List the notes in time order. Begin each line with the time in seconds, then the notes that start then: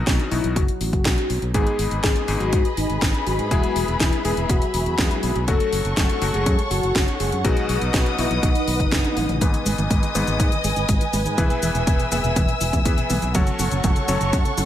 Already playing: B2 F#3 B3 D#4 F#4
0.07 B1 D#4, kick, snare, closed hi-hat
0.19 closed hi-hat
0.31 B1 B2 F#3 B3 D#4 E4 F#4, open hi-hat
0.44 B1, closed hi-hat
0.56 F#1 F#4, kick, closed hi-hat
0.68 closed hi-hat
0.81 A1, open hi-hat
0.93 F#1, kick, closed hi-hat
1.05 B1, kick, snare, closed hi-hat
1.18 closed hi-hat
1.30 B1, open hi-hat
1.42 B1, closed hi-hat
1.54 G#1 G#2 G#3 B3 D#4 G#4 B4 D#5 B5, kick, closed hi-hat
1.67 closed hi-hat
1.79 G#1, open hi-hat
1.91 G#1, closed hi-hat
2.03 G#1 G#4, kick, snare, closed hi-hat
2.16 closed hi-hat
2.28 G#1 G#2 G#3 B3 D#4 G#4, open hi-hat
2.40 G#1 F#4, closed hi-hat
2.53 G#2, kick, closed hi-hat
2.65 closed hi-hat
2.77 G#1 D#4, open hi-hat
2.90 G#1, closed hi-hat
3.02 G#1, kick, snare, closed hi-hat
3.14 closed hi-hat
3.27 G#1 F#4, open hi-hat
3.39 G#2, closed hi-hat
3.51 E1 G#3 B3 E4 F#4 G#4 E5, kick, closed hi-hat
3.63 closed hi-hat
3.76 E1, open hi-hat
3.88 E1, closed hi-hat
4.00 E1 E4, kick, snare, closed hi-hat
4.13 closed hi-hat
4.25 E1 G#3 B3 E4 G#4, open hi-hat
4.37 E1, closed hi-hat
4.49 E1 F#4, kick, closed hi-hat
4.62 closed hi-hat
4.74 E1, open hi-hat
4.86 E2, closed hi-hat
4.98 E2 G#3 B3 E4 G#4, kick, snare, closed hi-hat
5.11 closed hi-hat
5.23 B1, open hi-hat
5.36 B1, closed hi-hat
5.48 F#1 F#3 A3 C#4 F#4 A4 C#5 F#5 C#6, kick, closed hi-hat
5.60 closed hi-hat
5.73 F#1, open hi-hat
5.85 F#1, closed hi-hat
5.97 F#1 A4, kick, snare, closed hi-hat
6.09 closed hi-hat
6.22 F#1 F#3 A3 C#4 F#4, open hi-hat
6.34 F#1 G#4, closed hi-hat
6.46 F#2, kick, closed hi-hat
6.59 closed hi-hat
6.71 F#1 F#4, open hi-hat
6.83 F#1, closed hi-hat
6.95 F#1, kick, snare, closed hi-hat
7.08 closed hi-hat
7.20 F#1 G#4, open hi-hat
7.32 F#2, closed hi-hat
7.45 B1 B2 F#3 B3 D#4 F#4 G#4 B4 D#5 D#6, kick, closed hi-hat
7.57 closed hi-hat
7.69 B1, open hi-hat
7.82 B1, closed hi-hat
7.94 B1 F#4, kick, snare, closed hi-hat
8.06 closed hi-hat
8.18 B1 B2 F#3 B3 D#4 E4 F#4, open hi-hat
8.31 B1, closed hi-hat
8.43 B1 D#4, kick, closed hi-hat
8.55 closed hi-hat
8.68 B1, open hi-hat
8.80 F#1, kick, closed hi-hat
8.92 F#1, kick, snare, closed hi-hat
9.05 closed hi-hat, high tom
9.17 A1, open hi-hat, mid tom
9.29 A1, closed hi-hat, mid tom
9.41 G#1 G#2 G#3 B3 D#4 G#4 B4 D#5 G#5 D#6, kick, closed hi-hat, mid tom, cabasa
9.54 D#3, closed hi-hat, cabasa
9.66 G#1 G#3, open hi-hat, cabasa
9.78 G#1 D#3, closed hi-hat, mid tom, cabasa
9.91 G#1 G#3, kick, closed hi-hat, cabasa
10.03 D#3, closed hi-hat, cabasa
10.15 G#1 G#2 G#3 B3 D#4 G#4 B4, open hi-hat, mid tom, cabasa
10.27 G#1 D#3, closed hi-hat, cabasa
10.40 G#2 G#3, kick, closed hi-hat, mid tom, cabasa
10.52 D#3, closed hi-hat, cabasa
10.64 G#1 G#3, open hi-hat, cabasa
10.76 G#1 D#3, closed hi-hat, cabasa
10.89 G#1 G#3, kick, closed hi-hat, cabasa
11.01 D#3, closed hi-hat, cabasa
11.13 G#1 G#3, open hi-hat, mid tom, cabasa
11.26 G#2 D#3, closed hi-hat, cabasa
11.38 E1 E3 B3 E4 G#4 B4 E5 E6, kick, closed hi-hat, mid tom, cabasa
11.50 B2, closed hi-hat, cabasa
11.63 E1 E3, open hi-hat, cabasa
11.75 E1 B2, closed hi-hat, cabasa
11.87 E1 E3, kick, closed hi-hat, cabasa
12.00 B2, closed hi-hat, cabasa
12.12 E1 E3 B3 E4 G#4 B4, open hi-hat, mid tom, cabasa
12.24 E1 B2, closed hi-hat, cabasa
12.36 E1 E3, kick, closed hi-hat, mid tom, cabasa
12.49 B2, closed hi-hat, cabasa
12.61 E1 E3, open hi-hat, cabasa
12.73 E2 B2, kick, closed hi-hat, mid tom, cabasa
12.85 E2 E3 B3 E4 G#4 B4, kick, closed hi-hat, cabasa
12.98 B2, closed hi-hat, cabasa
13.10 B1 E3, open hi-hat, mid tom, cabasa
13.22 B1 B2, closed hi-hat, cabasa
13.34 F#1 F#3 C#4 F#4 A4 C#5 F#5 C#6, kick, closed hi-hat, mid tom, cabasa
13.47 C#3, closed hi-hat, cabasa
13.59 F#1 F#3, open hi-hat, mid tom, cabasa
13.71 F#1 C#3, closed hi-hat, cabasa
13.84 F#1 F#3, kick, closed hi-hat, mid tom, cabasa
13.96 C#3, closed hi-hat, cabasa
14.08 F#1 F#3 C#4 F#4 A4 C#5, open hi-hat, mid tom, cabasa
14.21 F#1 C#3, closed hi-hat, cabasa
14.33 F#2 F#3, kick, closed hi-hat, mid tom, cabasa
14.45 C#3, closed hi-hat, cabasa
14.58 F#1 F#3, open hi-hat, mid tom, cabasa